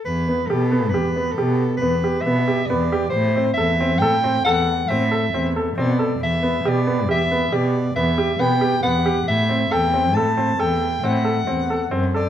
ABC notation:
X:1
M:7/4
L:1/8
Q:1/4=137
K:Em
V:1 name="Soprano saxophone"
B2 A2 B2 A2 B2 e2 d2 | c2 e2 g2 f2 e3 z d2 | e2 d2 e2 d2 e2 g2 f2 | e2 g2 a2 g2 f4 z d |]
V:2 name="Grand piano"
z B, G B, G B, G2 B, G B, G B, G | z C A C A C A2 C A C A C A | z B, G B, G B, G2 B, G B, G B, G | z C A C A C A2 C A C A C A |]
V:3 name="Cello" clef=bass
E,,2 B,,2 E,,2 B,,2 E,,2 B,,2 E,,2 | A,,2 E,,2 A,,2 E,,2 A,,2 E,,2 B,,2 | E,,2 B,,2 E,,2 B,,2 E,,2 B,,2 E,,2 | A,,2 E,,2 A,,2 E,,2 A,,2 E,,2 F,,2 |]